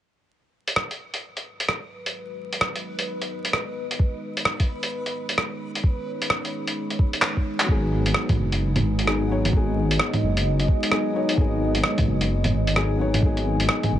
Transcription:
0.29 13.99 G#3 medium
0.29 7.69 B4 medium
0.60 13.99 B4 medium
0.65 5.15 F#4 medium
0.65 closed hi-hat medium
0.76 cross-stick loud
0.90 13.99 D#4 medium
0.90 5.00 D#5 medium
0.90 closed hi-hat soft
1.14 closed hi-hat soft
1.37 closed hi-hat soft
1.60 closed hi-hat medium
1.69 cross-stick medium
2.06 closed hi-hat soft
2.53 closed hi-hat medium
2.61 cross-stick loud
2.76 closed hi-hat soft
2.99 closed hi-hat medium
3.22 closed hi-hat soft
3.45 closed hi-hat medium
3.53 cross-stick medium
3.91 closed hi-hat medium
3.99 kick loud
4.37 closed hi-hat medium
4.45 cross-stick loud
4.60 kick medium
4.60 closed hi-hat soft
4.83 8.53 C#5 medium
4.83 closed hi-hat medium
5.02 7.68 G#4 medium
5.06 closed hi-hat soft
5.29 closed hi-hat soft
5.38 cross-stick loud
5.75 closed hi-hat medium
5.84 kick loud
6.22 closed hi-hat medium
6.30 cross-stick loud
6.45 closed hi-hat soft
6.67 closed hi-hat medium
6.90 closed hi-hat soft
6.99 kick loud
7.13 closed hi-hat soft
7.22 cross-stick medium
7.22 clap loud
7.37 kick medium
7.60 9.02 F#3 medium
7.60 clap medium
7.60 closed hi-hat soft
7.66 8.14 G#1 medium
7.66 9.03 B3 medium
7.66 9.05 D#4 medium
7.66 kick loud
7.71 9.06 G#4 medium
7.85 11.38 F#4 medium
8.06 closed hi-hat medium
8.14 cross-stick loud
8.28 13.99 D#5 medium
8.28 kick loud
8.28 closed hi-hat soft
8.28 low bongo soft
8.38 8.83 F#1 medium
8.52 closed hi-hat medium
8.76 closed hi-hat soft
8.76 low bongo medium
8.84 9.52 G#1 medium
8.99 closed hi-hat medium
9.04 9.26 F#3 medium
9.04 9.27 B3 medium
9.04 9.28 D#4 medium
9.04 cross-stick loud
9.08 9.28 G#4 medium
9.28 9.47 F#3 medium
9.28 9.50 B3 medium
9.28 9.51 D#4 medium
9.28 9.52 C#5 loud
9.45 10.87 F#3 medium
9.45 closed hi-hat medium
9.45 low bongo soft
9.51 9.98 G#1 medium
9.51 10.89 B3 medium
9.51 10.90 D#4 medium
9.51 kick loud
9.56 10.91 G#4 loud
9.91 closed hi-hat medium
9.99 cross-stick loud
10.13 closed hi-hat soft
10.13 low bongo soft
10.23 10.68 F#1 medium
10.37 closed hi-hat medium
10.60 closed hi-hat soft
10.68 kick loud
10.83 closed hi-hat medium
10.89 11.10 F#3 medium
10.89 11.11 B3 medium
10.89 11.13 D#4 medium
10.89 11.13 G#4 medium
10.89 cross-stick loud
11.12 11.31 F#3 medium
11.12 11.34 B3 medium
11.12 11.36 D#4 medium
11.12 11.36 C#5 medium
11.27 13.99 G#5 medium
11.27 closed hi-hat medium
11.33 12.72 F#3 medium
11.33 12.73 B3 medium
11.37 11.83 G#1 medium
11.37 12.74 D#4 medium
11.37 12.76 G#4 loud
11.37 kick loud
11.75 closed hi-hat medium
11.84 cross-stick loud
11.98 kick loud
11.98 closed hi-hat soft
11.98 low bongo soft
12.07 12.52 F#1 medium
12.21 closed hi-hat medium
12.44 closed hi-hat soft
12.44 low bongo soft
12.54 13.22 G#1 medium
12.67 closed hi-hat medium
12.73 12.95 F#3 medium
12.73 12.97 B3 medium
12.73 12.97 D#4 medium
12.73 cross-stick loud
12.77 12.98 G#4 medium
12.97 13.16 F#3 medium
12.97 13.19 B3 medium
12.97 13.20 D#4 medium
13.01 13.21 C#5 loud
13.14 13.99 F#3 medium
13.14 closed hi-hat medium
13.14 low bongo soft
13.20 13.68 G#1 medium
13.20 13.99 B3 medium
13.20 13.99 D#4 medium
13.20 kick loud
13.25 13.99 G#4 medium
13.37 closed hi-hat soft
13.60 closed hi-hat medium
13.69 cross-stick loud
13.83 closed hi-hat soft
13.83 low bongo soft
13.92 13.99 F#1 medium

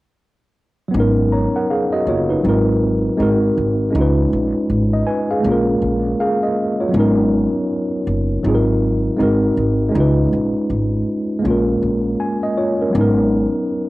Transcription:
0.88 2.38 F#3 medium
0.88 2.39 B3 medium
0.94 1.45 G#1 loud
0.94 2.41 C#4 medium
0.94 1.32 D#4 medium
1.00 1.33 A#4 medium
1.32 1.54 C#5 medium
1.32 1.54 A#5 medium
1.56 1.69 A#4 soft
1.56 1.69 F#5 medium
1.70 1.92 G#4 medium
1.70 1.91 F5 medium
1.93 2.06 F#4 medium
1.93 2.06 D#5 medium
2.07 2.38 F#1 medium
2.07 2.30 F4 medium
2.07 2.29 C#5 medium
2.30 2.45 D#4 medium
2.30 2.65 B4 medium
2.43 3.07 G#1 medium
2.43 3.18 F#3 medium
2.43 3.17 C4 medium
2.43 3.18 D#4 medium
2.48 3.20 F4 medium
2.48 3.21 A#4 medium
3.17 3.51 G#1 medium
3.17 3.89 G#3 medium
3.17 3.93 C4 medium
3.17 3.94 D#4 medium
3.17 3.95 F#4 medium
3.22 3.95 A#4 medium
3.58 3.88 G#1 medium
3.90 5.39 G#3 medium
3.90 5.40 C#4 medium
3.95 4.26 C#2 loud
3.95 5.42 D#4 medium
3.95 5.43 F4 medium
4.01 4.34 B4 medium
4.33 4.52 A#1 medium
4.70 5.01 G#1 medium
4.93 5.06 D#5 medium
5.07 5.29 B4 medium
5.07 5.28 G#5 medium
5.31 5.66 G#4 medium
5.31 5.66 F5 medium
5.40 6.89 G#3 medium
5.40 6.90 A#3 medium
5.44 5.76 A#1 medium
5.44 6.92 C#4 medium
5.48 6.20 F4 medium
5.48 6.21 A#4 medium
5.82 6.13 A#1 medium
6.20 6.42 G#4 medium
6.20 6.41 F5 medium
6.43 6.78 D#5 medium
6.80 7.16 F4 soft
6.80 7.15 C#5 medium
6.88 8.38 F#3 medium
6.88 8.39 B3 medium
6.94 7.45 G#1 loud
6.94 8.41 C#4 medium
6.94 8.42 D#4 medium
6.99 8.44 A#4 medium
8.07 8.38 F#1 medium
8.43 9.07 G#1 medium
8.43 9.18 F#3 medium
8.43 9.17 C4 medium
8.43 9.18 D#4 medium
8.47 9.20 F4 medium
8.47 8.54 G#4 medium
8.55 9.21 A#4 medium
9.17 9.51 G#1 medium
9.17 9.88 G#3 medium
9.17 9.93 C4 medium
9.17 9.93 D#4 medium
9.21 9.95 F#4 medium
9.21 9.95 A#4 medium
9.57 9.88 G#1 medium
9.89 11.38 G#3 medium
9.89 11.40 C#4 medium
9.95 10.26 C#2 loud
9.95 11.41 D#4 medium
9.95 11.42 F4 medium
10.00 11.44 B4 medium
10.33 10.52 A#1 medium
10.70 11.01 G#1 medium
11.39 12.88 G#3 medium
11.39 12.90 A#3 medium
11.44 11.76 A#1 medium
11.44 12.17 C#4 medium
11.44 12.19 F4 medium
11.50 12.20 A#4 medium
11.83 12.13 A#1 medium
12.20 12.41 G#5 medium
12.43 12.56 D#5 medium
12.57 12.79 F4 medium
12.57 12.79 C#5 medium
12.82 12.94 C#4 soft
12.82 13.00 A#4 medium
12.90 13.89 F#3 medium
12.90 13.89 B3 medium
12.95 13.45 G#1 loud
12.95 13.89 C#4 medium
12.95 13.32 D#4 medium
13.01 13.34 A#4 medium

